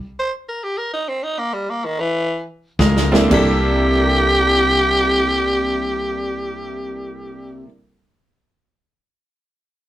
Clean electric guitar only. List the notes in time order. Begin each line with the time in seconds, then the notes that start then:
2.79 C#3 G#3
3.12 C#3 A#3
3.31 C3 A#3 E4
3.35 A4